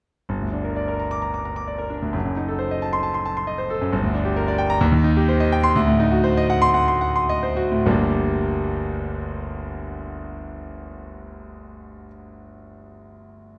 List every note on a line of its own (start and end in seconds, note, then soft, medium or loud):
0.29 2.11 G1 medium
0.41 0.60 D2 soft
0.53 0.72 D4 soft
0.64 0.83 A#4 soft
0.76 0.95 D5 medium
0.88 1.06 A#4 medium
1.00 1.18 A#5 medium
1.11 1.29 D6 medium
1.22 1.41 A#5 medium
1.34 1.52 D6 medium
1.45 1.64 A#5 soft
1.56 1.75 D6 medium
1.68 1.86 D5 soft
1.78 1.98 A#4 medium
1.90 2.09 D4 soft
2.02 2.14 D2 medium
2.13 3.88 F#1 medium
2.25 2.44 F#2 soft
2.36 2.55 D#4 soft
2.48 2.67 A4 soft
2.59 2.77 C5 medium
2.71 2.89 D#5 medium
2.82 3.00 A5 medium
2.93 3.11 C6 medium
3.03 3.21 A5 medium
3.14 3.32 C6 medium
3.26 3.43 A5 medium
3.37 3.54 C6 medium
3.47 3.65 D#5 medium
3.58 3.76 C5 medium
3.70 3.88 A4 medium
3.81 3.92 F#2 medium
3.92 4.79 G1 medium
4.03 4.21 D2 medium
4.14 4.32 D4 medium
4.25 4.43 G4 medium
4.36 4.54 A#4 medium
4.48 4.66 D5 medium
4.58 4.77 G5 medium
4.70 4.81 A#5 loud
4.81 5.73 D#2 medium
4.92 5.11 D#3 medium
5.04 5.23 D#4 medium
5.17 5.35 G4 medium
5.28 5.47 C5 medium
5.40 5.59 D#5 medium
5.52 5.71 G5 medium
5.63 5.76 C6 loud
5.76 7.82 D2 medium
5.87 6.07 A2 medium
6.00 6.19 D#4 medium
6.11 6.31 F#4 medium
6.24 6.44 C5 medium
6.37 6.57 D#5 medium
6.50 6.70 F#5 medium
6.62 6.83 C6 loud
6.74 6.96 F#5 medium
6.88 7.10 C6 medium
7.01 7.23 F#5 medium
7.16 7.38 C6 medium
7.29 7.52 D#5 medium
7.43 7.66 C5 medium
7.57 7.80 F#4 medium
7.72 7.86 A2 medium
7.86 12.06 G1 medium
7.86 12.06 D2 medium
7.86 12.06 G3 medium
7.86 12.07 A#3 medium
7.86 12.07 D4 medium
7.86 12.07 G4 medium